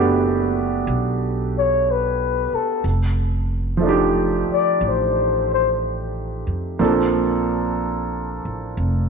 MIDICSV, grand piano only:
0, 0, Header, 1, 2, 480
1, 0, Start_track
1, 0, Tempo, 986842
1, 1380, Time_signature, 4, 2, 24, 8
1, 4421, End_track
2, 0, Start_track
2, 0, Title_t, "Grand piano"
2, 0, Program_c, 0, 0
2, 0, Control_c, 0, 64, 127
2, 0, Note_on_c, 0, 57, 51
2, 0, Note_on_c, 0, 59, 51
2, 0, Note_on_c, 0, 62, 53
2, 0, Note_on_c, 0, 66, 52
2, 0, Note_on_c, 0, 67, 61
2, 1372, Note_off_c, 0, 66, 0
2, 1377, Note_off_c, 0, 57, 0
2, 1384, Note_off_c, 0, 59, 0
2, 1386, Control_c, 0, 64, 0
2, 1392, Note_off_c, 0, 62, 0
2, 1399, Note_off_c, 0, 67, 0
2, 1461, Control_c, 0, 64, 127
2, 1834, Note_on_c, 0, 53, 52
2, 1851, Note_on_c, 0, 57, 47
2, 1863, Note_on_c, 0, 62, 48
2, 1877, Note_on_c, 0, 63, 46
2, 1890, Note_on_c, 0, 67, 60
2, 3293, Note_off_c, 0, 53, 0
2, 3301, Note_off_c, 0, 57, 0
2, 3304, Note_off_c, 0, 62, 0
2, 3304, Note_on_c, 0, 58, 46
2, 3305, Note_on_c, 0, 53, 53
2, 3306, Note_on_c, 0, 60, 46
2, 3311, Control_c, 0, 64, 0
2, 3311, Note_on_c, 0, 62, 47
2, 3312, Note_on_c, 0, 69, 57
2, 3314, Note_off_c, 0, 63, 0
2, 3321, Note_off_c, 0, 67, 0
2, 3399, Control_c, 0, 64, 127
2, 4421, Note_off_c, 0, 53, 0
2, 4421, Note_off_c, 0, 58, 0
2, 4421, Note_off_c, 0, 60, 0
2, 4421, Note_off_c, 0, 62, 0
2, 4421, Note_off_c, 0, 69, 0
2, 4421, End_track
0, 0, End_of_file